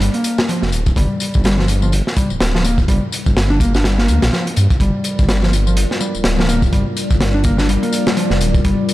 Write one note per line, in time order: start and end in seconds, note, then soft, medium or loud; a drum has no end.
0.00 0.14 G3 medium
0.00 closed hi-hat medium
0.00 tambourine soft
0.14 0.48 A#3 medium
0.14 closed hi-hat soft
0.24 closed hi-hat medium
0.24 tambourine medium
0.38 snare loud
0.38 tambourine soft
0.49 0.62 F3 medium
0.49 closed hi-hat medium
0.49 tambourine soft
0.62 0.74 F1 medium
0.62 snare soft
0.72 0.92 D1 medium
0.72 closed hi-hat medium
0.72 tambourine medium
0.86 kick medium
0.86 tambourine soft
0.96 1.07 G1 loud
0.96 1.44 G3 medium
0.96 kick loud
0.96 closed hi-hat medium
0.96 tambourine soft
1.20 closed hi-hat medium
1.20 tambourine medium
1.34 2.02 G1 loud
1.34 kick medium
1.34 tambourine soft
1.44 1.58 G3 medium
1.44 snare loud
1.44 closed hi-hat medium
1.44 tambourine soft
1.59 1.68 F3 medium
1.59 snare soft
1.68 closed hi-hat medium
1.68 tambourine medium
1.82 1.92 F3 medium
1.82 tambourine soft
1.92 closed hi-hat medium
1.92 tambourine soft
2.07 snare soft
2.16 2.30 G3 medium
2.16 kick loud
2.16 closed hi-hat medium
2.16 tambourine medium
2.30 2.39 D1 soft
2.30 tambourine soft
2.40 2.85 D1 medium
2.40 snare loud
2.40 closed hi-hat medium
2.40 tambourine soft
2.54 2.64 F3 medium
2.54 snare medium
2.64 2.77 A#3 loud
2.64 closed hi-hat medium
2.64 tambourine medium
2.78 kick medium
2.78 tambourine soft
2.88 2.99 G1 loud
2.88 3.02 G3 medium
2.88 kick loud
2.88 closed hi-hat medium
2.88 tambourine soft
3.12 closed hi-hat medium
3.12 tambourine medium
3.26 4.11 G1 loud
3.26 kick medium
3.26 tambourine soft
3.37 snare loud
3.37 closed hi-hat medium
3.37 tambourine soft
3.50 3.60 D4 loud
3.60 3.73 A#3 loud
3.60 kick medium
3.60 closed hi-hat medium
3.60 tambourine medium
3.74 3.83 D4 loud
3.74 snare medium
3.74 tambourine soft
3.84 3.98 G3 medium
3.84 snare medium
3.84 closed hi-hat medium
3.84 tambourine soft
3.98 4.32 A#3 medium
3.98 snare soft
4.08 4.20 D2 medium
4.08 closed hi-hat medium
4.08 tambourine medium
4.22 4.31 A#1 medium
4.22 snare medium
4.22 closed hi-hat medium
4.22 tambourine soft
4.33 4.46 F3 medium
4.33 snare medium
4.33 tambourine soft
4.47 closed hi-hat medium
4.56 4.68 G2 medium
4.56 closed hi-hat medium
4.56 tambourine medium
4.70 kick medium
4.70 tambourine soft
4.80 4.91 G1 loud
4.80 5.28 G3 medium
4.80 8.94 G3 medium
4.80 8.94 F4 medium
4.80 8.94 A#4 medium
4.80 8.94 D5 medium
4.80 kick loud
4.80 closed hi-hat medium
4.80 tambourine soft
5.04 closed hi-hat medium
5.04 tambourine medium
5.19 5.86 G1 loud
5.19 kick loud
5.19 tambourine soft
5.29 5.42 G3 medium
5.29 snare loud
5.29 closed hi-hat medium
5.29 tambourine soft
5.43 5.52 F3 medium
5.43 snare soft
5.53 closed hi-hat medium
5.53 tambourine medium
5.67 5.76 F3 medium
5.67 tambourine soft
5.77 closed hi-hat medium
5.77 tambourine soft
5.91 snare soft
6.01 6.14 G3 medium
6.01 tambourine medium
6.15 6.23 D1 soft
6.15 tambourine soft
6.24 6.69 D1 medium
6.24 snare loud
6.24 closed hi-hat medium
6.24 tambourine soft
6.39 6.48 F3 medium
6.39 snare medium
6.49 6.61 A#3 loud
6.49 closed hi-hat medium
6.49 tambourine medium
6.62 kick medium
6.62 tambourine soft
6.73 6.83 G1 loud
6.73 6.86 G3 medium
6.73 kick loud
6.73 closed hi-hat medium
6.73 tambourine soft
6.97 closed hi-hat medium
6.97 tambourine medium
7.10 7.78 G1 loud
7.10 kick medium
7.10 tambourine soft
7.20 snare loud
7.20 closed hi-hat medium
7.20 tambourine soft
7.34 7.44 D4 loud
7.44 7.57 A#3 loud
7.44 kick medium
7.44 closed hi-hat medium
7.44 tambourine medium
7.58 7.67 D4 loud
7.58 snare soft
7.58 tambourine soft
7.68 7.82 G3 medium
7.68 closed hi-hat medium
7.68 tambourine soft
7.82 8.16 A#3 medium
7.82 closed hi-hat soft
7.93 closed hi-hat medium
7.93 tambourine medium
8.07 snare loud
8.07 tambourine soft
8.17 8.30 F3 medium
8.17 closed hi-hat medium
8.17 tambourine soft
8.30 8.42 F1 medium
8.30 snare soft
8.41 8.60 D1 loud
8.41 closed hi-hat medium
8.41 tambourine medium
8.55 kick medium
8.55 tambourine soft
8.64 8.76 G1 loud
8.64 8.94 G3 medium
8.64 kick loud
8.64 closed hi-hat medium
8.64 tambourine soft
8.89 closed hi-hat medium
8.89 tambourine medium